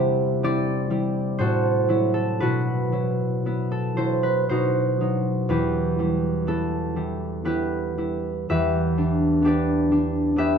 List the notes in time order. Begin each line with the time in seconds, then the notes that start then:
Already playing: C3 G3 E4 G4 C5 E5 F#5
0.43 C4 E4 D5
0.90 G3 E4
1.39 A2 F#4 A4 C5
1.89 F#3 E4
2.14 A4
2.40 B2 E4 F#4 B4
2.92 F#3 E4
3.46 B3 E4
3.72 A4
3.97 F#3 E4 C5
4.23 B4
4.49 B2 D#4 F#4 C5
5.01 F#3 D#4
5.49 E2 E4 G4 B4
5.99 G3 E4
6.47 B3 E4 A4
6.96 G3 E4
7.45 B3 E4 G4 B4
7.98 G3 E4
8.50 E2 G4 B4 E5
8.98 G3 D4
9.42 B3 D4 G4
9.46 B4 D5
9.91 G3 D4
10.36 B3 D4 G4 B4 E5